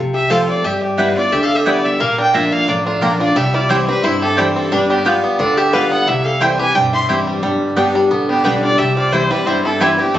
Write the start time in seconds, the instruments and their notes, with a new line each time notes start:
Already playing: upright bass C2, steel-string acoustic guitar C3
0.14 resonator guitar played with a steel bar G4, fiddle E5
0.30 steel-string acoustic guitar F3 A3 C4 F4, mandolin C4 F4 C5 A5, resonator guitar played with a steel bar A4, fiddle F5
0.48 resonator guitar played with a steel bar F4, fiddle D5
0.64 upright bass G2, steel-string acoustic guitar G3, resonator guitar played with a steel bar G4, fiddle E5
0.82 fiddle G4, muted resonator guitar played with a steel bar stroke
0.97 steel-string acoustic guitar G3 B3 E4, mandolin B3 E4 B4 G5, resonator guitar played with a steel bar D4, fiddle B4
1.16 steel-string acoustic guitar B3 E4, resonator guitar played with a steel bar F4, fiddle D5
1.32 upright bass D2, steel-string acoustic guitar D3, resonator guitar played with a steel bar G4, fiddle E5
1.43 resonator guitar played with a steel bar A4, fiddle F5
1.55 resonator guitar played with a steel bar G4, fiddle E5
1.65 steel-string acoustic guitar G3 B3 E4, mandolin B3 E4 B4 G5, resonator guitar played with a steel bar G4, fiddle D5
1.84 resonator guitar played with a steel bar G4, fiddle E5
2.00 upright bass A#1, steel-string acoustic guitar A#2, five-string banjo A#3, resonator guitar played with a steel bar A#4, fiddle F5
2.18 five-string banjo D4, resonator guitar played with a steel bar A#4, fiddle G5
2.33 steel-string acoustic guitar F3 A#3 D4 F4, mandolin A#3 F4 D5 A#5, five-string banjo D4, resonator guitar played with a steel bar A#4, fiddle E5
2.52 five-string banjo A#3, resonator guitar played with a steel bar A4, fiddle F5
2.67 upright bass A1, steel-string acoustic guitar F2, five-string banjo D4, resonator guitar played with a steel bar F4, fiddle D5
2.86 resonator guitar played with a steel bar A3, five-string banjo D4, fiddle F4
3.01 upright bass A#1, steel-string acoustic guitar F3 A#3 D4 F4, mandolin A#3 F4 D5 A#5, resonator guitar played with a steel bar D4, five-string banjo G4, fiddle A#4
3.20 five-string banjo D4, steel-string acoustic guitar D4 F4, resonator guitar played with a steel bar F4, fiddle D5
3.36 upright bass C2, steel-string acoustic guitar C3, five-string banjo G3, resonator guitar played with a steel bar G4, fiddle E5
3.54 five-string banjo E4, resonator guitar played with a steel bar F4, fiddle D5
3.69 steel-string acoustic guitar E3 G3 C4 E4, mandolin C4 E4 C5 G5, resonator guitar played with a steel bar E4, five-string banjo G4, fiddle C5
3.88 five-string banjo C4, steel-string acoustic guitar C4 E4, resonator guitar played with a steel bar D4, fiddle B4
4.03 upright bass G1, steel-string acoustic guitar G2, resonator guitar played with a steel bar E4, five-string banjo E4, fiddle C5
4.22 resonator guitar played with a steel bar C4, five-string banjo G4, fiddle A4
4.37 steel-string acoustic guitar E3 G3 C4 E4, five-string banjo G3, mandolin C4 E4 C5 G5, resonator guitar played with a steel bar C4, fiddle G4
4.56 five-string banjo C4, resonator guitar played with a steel bar C4, fiddle A4
4.72 upright bass G1, steel-string acoustic guitar G3, five-string banjo G3, resonator guitar played with a steel bar D4, fiddle B4
4.90 resonator guitar played with a steel bar B3, five-string banjo D4, fiddle G4
5.05 steel-string acoustic guitar G3 B3 F4, mandolin B3 F4 B4 G5, five-string banjo G4
5.24 five-string banjo B3
5.39 upright bass D2, steel-string acoustic guitar D3, five-string banjo D4, resonator guitar played with a steel bar F4, fiddle D5
5.57 resonator guitar played with a steel bar G4, five-string banjo G4, fiddle E5
5.73 steel-string acoustic guitar G3 B3 F4, five-string banjo G3, mandolin B3 F4 B4 G5, resonator guitar played with a steel bar B4, fiddle F5
5.91 five-string banjo B3, resonator guitar played with a steel bar A4, fiddle F#5
6.07 upright bass C2, steel-string acoustic guitar C3, five-string banjo E4, resonator guitar played with a steel bar G4, fiddle E5
6.25 resonator guitar played with a steel bar A4, fiddle F5
6.40 steel-string acoustic guitar E3 G3 C4 E4, mandolin C4 E4 C5 G5, five-string banjo E4, resonator guitar played with a steel bar C5, fiddle G5
6.59 steel-string acoustic guitar C4 E4, five-string banjo G4, resonator guitar played with a steel bar B4, fiddle G#5
6.75 upright bass B1, steel-string acoustic guitar G2, five-string banjo G3, resonator guitar played with a steel bar C5, fiddle G5
6.93 five-string banjo E4, resonator guitar played with a steel bar E5, fiddle C6
7.08 upright bass A1, steel-string acoustic guitar E3 G3 C4 E4, mandolin C4 E4 C5 G5, five-string banjo G4
7.27 five-string banjo G3
7.43 upright bass G1, steel-string acoustic guitar G2, five-string banjo G3
7.76 upright bass G1, steel-string acoustic guitar G3 B3 D4 G4, mandolin B3 G4 D5 G5, five-string banjo D4
7.95 five-string banjo G3
8.11 upright bass A1, steel-string acoustic guitar D3, five-string banjo B3
8.29 resonator guitar played with a steel bar B3, five-string banjo D4, fiddle G4
8.44 upright bass B1, steel-string acoustic guitar G3 B3 D4 G4, mandolin B3 G4 D5 G5, resonator guitar played with a steel bar D4, five-string banjo G4, fiddle B4
8.63 five-string banjo G3, resonator guitar played with a steel bar F4, fiddle D5
8.78 upright bass C2, steel-string acoustic guitar C3, five-string banjo G3, resonator guitar played with a steel bar G4, fiddle E5
8.96 five-string banjo C4, resonator guitar played with a steel bar F4, fiddle D5
9.12 steel-string acoustic guitar E3 G3 C4 E4, mandolin C4 E4 C5 G5, five-string banjo E4, resonator guitar played with a steel bar E4, fiddle C5
9.30 five-string banjo G3, steel-string acoustic guitar C4 E4, resonator guitar played with a steel bar D4, fiddle B4
9.46 upright bass G1, steel-string acoustic guitar G2, five-string banjo C4, resonator guitar played with a steel bar E4, fiddle C5
9.64 resonator guitar played with a steel bar C4, five-string banjo E4, fiddle A4
9.80 steel-string acoustic guitar E3 G3 C4 E4, mandolin C4 E4 C5 G5, resonator guitar played with a steel bar E4, five-string banjo G4, fiddle B4
9.98 resonator guitar played with a steel bar B3, five-string banjo C4, steel-string acoustic guitar C4 E4, fiddle G4
10.14 steel-string acoustic guitar F2, upright bass F2, five-string banjo A3, resonator guitar played with a steel bar C4, fiddle A4